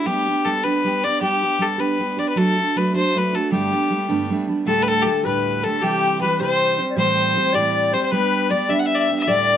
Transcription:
0.06 steel-string acoustic guitar G3 B3 D4 G4, fiddle G4
0.27 steel-string acoustic guitar B3 D4 G4
0.45 steel-string acoustic guitar G3 B3 D4 G4, fiddle A4
0.63 steel-string acoustic guitar G3 B3 D4 G4, fiddle B4
0.84 steel-string acoustic guitar G3 B3 D4 G4
1.04 steel-string acoustic guitar B3 D4 G4, fiddle D5
1.21 steel-string acoustic guitar G3 B3 D4 G4, fiddle G4
1.42 steel-string acoustic guitar B3 D4 G4
1.59 steel-string acoustic guitar G3 B3 D4 G4, fiddle A4
1.78 steel-string acoustic guitar G3 B3 D4 G4, fiddle B4
1.99 steel-string acoustic guitar G3 B3 D4 G4
2.17 steel-string acoustic guitar B3 D4 G4, fiddle D5
2.29 fiddle B4
2.36 steel-string acoustic guitar F#3 A3 D4 F#4, fiddle A4
2.58 steel-string acoustic guitar A3 D4 F#4
2.76 steel-string acoustic guitar F#3 A3 D4 F#4, fiddle B4
2.93 steel-string acoustic guitar F#3 A3 D4 F#4, fiddle C5
3.14 steel-string acoustic guitar F#3 A3 D4 F#4, fiddle B4
3.33 steel-string acoustic guitar A3 D4 F#4, fiddle A4
3.51 steel-string acoustic guitar G2 D3 G3 A3 B3 D4, fiddle G4
3.72 steel-string acoustic guitar G3 A3 B3 D4
3.90 steel-string acoustic guitar G3 A3 B3 D4
4.09 steel-string acoustic guitar G2 D3 G3 A3 B3 D4
4.30 steel-string acoustic guitar G3 A3 B3 D4
4.47 steel-string acoustic guitar G3 A3 B3 D4
4.65 steel-string acoustic guitar D2 A2 D3 G3 A3 G4, flute A4, fiddle A4
4.83 fiddle B4
4.88 fiddle A4, flute A4
5.02 steel-string acoustic guitar D3 G3, fiddle G4
5.07 steel-string acoustic guitar A3 G4, fiddle A4
5.23 steel-string acoustic guitar D2 A2 D3 G3 A3 G4, flute B4, fiddle B4
5.63 steel-string acoustic guitar D3 G3 A3 G4, flute A4, fiddle A4
5.81 steel-string acoustic guitar C3 E3 G3 C4 G4, flute G4, fiddle G4
6.20 steel-string acoustic guitar E3 G3 C4 G4, flute B4, fiddle B4
6.40 steel-string acoustic guitar C3 E3 G3 C4 G4, flute C5, fiddle C5
6.78 steel-string acoustic guitar G3 C4 G4
6.90 flute D5
6.96 steel-string acoustic guitar A2 E3 G3 C4 G4, flute C5, fiddle C5
7.35 steel-string acoustic guitar E3 G3 C4 G4
7.53 steel-string acoustic guitar A2 E3 G3 C4 G4, flute D5, fiddle D5
7.92 steel-string acoustic guitar G3 C4 G4, flute C5, fiddle C5
8.03 fiddle C5
8.11 steel-string acoustic guitar G3 B3 D4 G4, flute B4, fiddle B4
8.50 steel-string acoustic guitar G3 B3 D4 G4, flute D5, fiddle D5
8.69 steel-string acoustic guitar G3 B3 D4 G4, fiddle E5, flute E5
8.79 fiddle F#5
8.85 flute E5, fiddle E5
8.95 fiddle D5, flute E5
9.01 fiddle E5
9.09 steel-string acoustic guitar B3 D4 G4
9.19 fiddle E5
9.27 steel-string acoustic guitar D2 A2 D3 G3 A3 G4, flute D5, fiddle D5

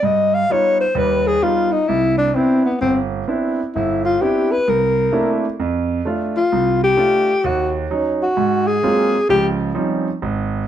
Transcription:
0.03 grand piano G2, alto saxophone D#5
0.34 alto saxophone F5
0.50 grand piano G3 B3 D#4 F4, alto saxophone C#5
0.81 alto saxophone C5
0.95 grand piano D#2 G3, alto saxophone B4
1.27 alto saxophone G#4
1.43 grand piano G3 B3 D#4 F4, alto saxophone F4
1.72 alto saxophone D#4
1.88 grand piano C2, alto saxophone E4
2.18 alto saxophone D4
2.35 grand piano B3 C4 D4 E4, alto saxophone C4
2.65 alto saxophone B3
2.81 grand piano G1, alto saxophone C4
3.28 grand piano B3 C4 D4 E4
3.75 grand piano G1, alto saxophone E4
4.05 alto saxophone F4
4.21 grand piano B3 C4 D4 E4, alto saxophone G4
4.51 alto saxophone B4
4.68 grand piano C2, alto saxophone A#4
5.12 grand piano A3 A#3 C4 D4 E4
5.60 grand piano F2
6.05 grand piano A3 D4 F4
6.36 alto saxophone F4
6.52 grand piano C2
6.84 alto saxophone G4
6.97 grand piano A3 D4 F4
7.44 grand piano D#2, alto saxophone F#4
7.90 grand piano F#3 C#4 D#4
8.23 alto saxophone F#4
8.37 grand piano G#2
8.67 alto saxophone G#4
8.83 grand piano F#3 G#3 A#3 C4 F4
9.29 grand piano C#2 F3, alto saxophone G4
9.75 grand piano F3 G3 C4 C#4 D#4
10.22 grand piano G#1

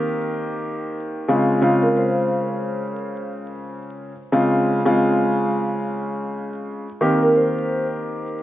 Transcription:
Already playing: upright piano D#3 A#3 C4 G4
1.28 upright piano C#3 G#3 C4 F4
1.62 upright piano C#3 G#3 C4 F4
1.83 vibraphone A#4
1.97 vibraphone C5
4.32 upright piano C#3 G#3 C4 F4
4.85 upright piano C#3 G#3 C4 F4
7.01 upright piano D#3 A#3 C4 G4
7.23 vibraphone A#4
7.36 vibraphone C5

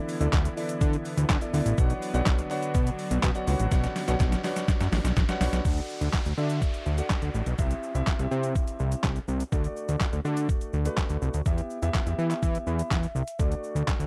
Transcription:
Already playing: analog synth pad D3 E3 B3 E4, grand piano E4 A4 D5
0.09 open hi-hat, shaker
0.21 analog synth bass D2, grand piano E4 A4 D5, closed hi-hat, shaker
0.32 analog synth bass D2, kick, snare, clap, shaker
0.45 closed hi-hat, shaker
0.57 grand piano E4 A4 D5, open hi-hat, shaker
0.69 closed hi-hat, shaker
0.81 analog synth bass D3, kick, shaker
0.93 closed hi-hat, shaker
1.05 open hi-hat, shaker
1.17 analog synth bass D2, closed hi-hat, shaker
1.29 analog synth bass D3, kick, snare, clap, shaker
1.41 grand piano E4 A4 D5, closed hi-hat, shaker
1.53 analog synth bass D2, grand piano E4 A4 D5, open hi-hat, shaker
1.66 analog synth bass A1, closed hi-hat, shaker
1.78 analog synth bass B1, analog synth pad D3 F#3 D4, grand piano D4 F#4 B4 C#5 F#5, kick, shaker
1.90 closed hi-hat, shaker
2.02 open hi-hat, shaker
2.14 analog synth bass B1, grand piano D4 F#4 B4 C#5 F#5, closed hi-hat, shaker
2.26 analog synth bass B1, kick, snare, clap, shaker
2.39 closed hi-hat, shaker
2.50 grand piano D4 F#4 B4 C#5 F#5, clap, open hi-hat, shaker
2.63 closed hi-hat, shaker
2.74 analog synth bass B2, kick, shaker
2.87 closed hi-hat, shaker
2.99 open hi-hat, shaker
3.11 analog synth bass B1, closed hi-hat, shaker
3.23 analog synth bass B2, kick, snare, clap, shaker
3.35 grand piano D4 F#4 B4 C#5 F#5, closed hi-hat, shaker
3.47 analog synth bass C#2, grand piano D4 F#4 B4 C#5 F#5, open hi-hat, shaker
3.60 analog synth bass A1, closed hi-hat, shaker
3.71 analog synth bass B1, grand piano D4 F#4 B4 C#5 F#5, kick, snare, shaker
3.84 snare, closed hi-hat, shaker
3.96 snare, open hi-hat, shaker
4.08 analog synth bass B1, grand piano D4 F#4 B4 C#5 F#5, snare, closed hi-hat, shaker
4.20 analog synth bass B1, kick, snare, clap, shaker
4.32 snare, closed hi-hat, shaker
4.44 grand piano D4 F#4 B4 C#5 F#5, snare, clap, open hi-hat, shaker
4.56 snare, closed hi-hat, shaker
4.68 kick, snare, shaker
4.80 analog synth bass F#2, snare, closed hi-hat, shaker
4.92 analog synth bass A1, snare, open hi-hat, shaker
5.04 analog synth bass B1, snare, closed hi-hat, shaker
5.17 analog synth bass A1, kick, snare, clap, shaker
5.29 grand piano D4 F#4 B4 C#5 F#5, snare, closed hi-hat, shaker
5.41 analog synth bass B1, grand piano D4 F#4 B4 C#5 F#5, snare, open hi-hat, shaker
5.53 analog synth bass B1, snare, closed hi-hat, shaker
5.65 analog synth bass D2, grand piano D4 F#4 A4 F#5, kick, downlifter, shaker
5.77 closed hi-hat, shaker
5.90 shaker
6.01 analog synth bass D2, closed hi-hat, shaker
6.13 kick, snare, clap, shaker
6.26 analog synth bass D2, closed hi-hat, shaker
6.38 analog synth bass D3, grand piano D4 F#4 A4 E5, shaker
6.50 closed hi-hat, shaker
6.62 kick, shaker
6.74 closed hi-hat, shaker
6.86 analog synth bass D2, shaker
6.98 grand piano D4 F#4 A4 F#5, closed hi-hat, shaker
7.09 kick, snare, clap, shaker
7.22 analog synth bass D2, closed hi-hat, shaker
7.35 analog synth bass A1, shaker
7.46 analog synth bass B1, closed hi-hat, shaker
7.58 analog synth bass C2, grand piano C4 E4 G4 E5, kick, shaker
7.71 closed hi-hat, shaker
7.83 shaker
7.95 analog synth bass C2, grand piano C4 E4 G4 E5, closed hi-hat, shaker
8.06 kick, snare, clap, shaker
8.19 analog synth bass C2, grand piano C4 E4 G4 E5, closed hi-hat, shaker
8.31 analog synth bass C3, shaker
8.43 closed hi-hat, shaker
8.55 kick, shaker
8.68 closed hi-hat, shaker
8.79 analog synth bass C2, shaker
8.92 closed hi-hat, shaker
9.03 analog synth bass C2, kick, snare, clap, shaker
9.16 closed hi-hat, shaker
9.28 analog synth bass C2, shaker
9.40 closed hi-hat, shaker
9.52 analog synth bass D2, grand piano A3 D4 F#4 D5, kick, shaker
9.64 closed hi-hat, shaker
9.77 shaker
9.89 analog synth bass D2, closed hi-hat, shaker
10.00 kick, snare, clap, shaker
10.13 analog synth bass D2, closed hi-hat, shaker
10.25 analog synth bass D3, grand piano A3 D4 F#4 D5, shaker
10.37 closed hi-hat, shaker
10.49 kick, shaker
10.61 closed hi-hat, shaker
10.73 analog synth bass D2, shaker
10.85 grand piano A3 D4 F#4 B4, closed hi-hat, shaker
10.97 kick, snare, clap, shaker
11.10 analog synth bass D2, closed hi-hat, shaker
11.22 analog synth bass C2, shaker
11.34 analog synth bass D2, closed hi-hat, shaker
11.46 analog synth bass E2, grand piano B3 E4 G4 E5, kick, shaker
11.58 closed hi-hat, shaker
11.70 shaker
11.82 analog synth bass E2, grand piano B3 E4 G4 E5, closed hi-hat, shaker
11.94 kick, snare, clap, shaker
12.06 analog synth bass E2, grand piano B3 E4 G4 E5, closed hi-hat, shaker
12.18 analog synth bass E3, shaker
12.31 clap, closed hi-hat, shaker
12.43 analog synth bass E3, kick, shaker
12.55 closed hi-hat, shaker
12.67 analog synth bass E2, grand piano B5, shaker
12.79 closed hi-hat, shaker
12.91 analog synth bass E2, kick, snare, clap, shaker
13.03 closed hi-hat, shaker
13.15 analog synth bass C2, shaker
13.28 closed hi-hat, shaker
13.39 analog synth bass D2, grand piano A3 D4 F#4 D5, kick, shaker
13.52 closed hi-hat, shaker
13.64 shaker
13.75 analog synth bass D2, closed hi-hat, shaker
13.87 kick, snare, clap, shaker
14.00 analog synth bass D2, closed hi-hat, shaker

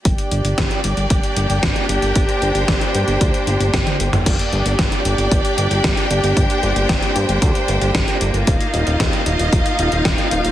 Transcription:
0.05 analog synth bass G1, string section A#3 D4 G4 D5 G5, kick, closed hi-hat
0.18 closed hi-hat
0.31 analog synth bass G1, closed hi-hat
0.45 analog synth bass G1, closed hi-hat
0.58 analog synth bass G1, kick, snare, closed hi-hat
0.71 closed hi-hat
0.84 analog synth bass G1, closed hi-hat
0.97 analog synth bass G1, closed hi-hat
1.10 analog synth bass G1, kick, closed hi-hat
1.24 closed hi-hat
1.37 analog synth bass G1, closed hi-hat
1.50 analog synth bass G1, closed hi-hat
1.63 analog synth bass G1, kick, snare, closed hi-hat
1.76 closed hi-hat
1.89 analog synth bass G1, closed hi-hat
2.02 analog synth bass G1, closed hi-hat
2.15 analog synth bass G1, string section C5, kick, closed hi-hat
2.29 closed hi-hat
2.42 analog synth bass G1, closed hi-hat
2.55 analog synth bass G1, closed hi-hat
2.68 analog synth bass G1, kick, snare, closed hi-hat
2.81 closed hi-hat
2.95 analog synth bass G2, closed hi-hat
3.08 analog synth bass G1, closed hi-hat
3.21 analog synth bass D2, kick, closed hi-hat
3.34 closed hi-hat
3.47 analog synth bass G1, closed hi-hat
3.60 analog synth bass G1, closed hi-hat
3.74 analog synth bass G1, kick, snare, closed hi-hat, high tom
3.87 closed hi-hat, high tom
4.00 analog synth bass G1, closed hi-hat
4.13 analog synth bass G1, closed hi-hat, mid tom
4.26 analog synth bass G1, string section A#3 D4 G4 D5 G5, kick, closed hi-hat, crash
4.39 closed hi-hat
4.53 analog synth bass G1, closed hi-hat
4.66 analog synth bass G1, closed hi-hat
4.79 analog synth bass G1, kick, snare, closed hi-hat
4.92 closed hi-hat
5.05 analog synth bass G1, closed hi-hat
5.18 analog synth bass G1, closed hi-hat
5.31 analog synth bass G1, kick, closed hi-hat
5.45 closed hi-hat
5.58 analog synth bass G1, closed hi-hat
5.71 analog synth bass G1, closed hi-hat
5.84 analog synth bass G1, kick, snare, closed hi-hat
5.97 closed hi-hat
6.11 analog synth bass G1, closed hi-hat
6.24 analog synth bass G1, closed hi-hat
6.37 analog synth bass G1, string section C5, kick, closed hi-hat
6.50 closed hi-hat
6.63 analog synth bass G1, closed hi-hat
6.76 analog synth bass G1, closed hi-hat
6.89 analog synth bass G1, kick, snare, closed hi-hat
7.03 closed hi-hat
7.16 analog synth bass G2, closed hi-hat
7.29 analog synth bass G1, closed hi-hat
7.42 analog synth bass D2, kick, closed hi-hat
7.55 closed hi-hat
7.68 analog synth bass G1, closed hi-hat
7.81 analog synth bass G1, closed hi-hat
7.95 analog synth bass G1, kick, snare, closed hi-hat
8.08 closed hi-hat
8.21 analog synth bass G1, closed hi-hat
8.34 analog synth bass G1, closed hi-hat
8.47 analog synth bass D#1, string section D#4 F4 D#5 F5, kick, closed hi-hat
8.61 closed hi-hat
8.74 analog synth bass D#1, closed hi-hat
8.87 analog synth bass D#1, closed hi-hat
9.00 analog synth bass D#1, kick, snare, closed hi-hat
9.13 closed hi-hat
9.26 analog synth bass D#1, closed hi-hat
9.39 analog synth bass D#1, closed hi-hat
9.53 analog synth bass D#1, kick, closed hi-hat
9.66 closed hi-hat
9.79 analog synth bass D#1, closed hi-hat
9.92 analog synth bass D#1, closed hi-hat
10.05 analog synth bass D#1, kick, snare, closed hi-hat
10.18 closed hi-hat
10.31 analog synth bass D#1, closed hi-hat
10.45 analog synth bass D#1, closed hi-hat

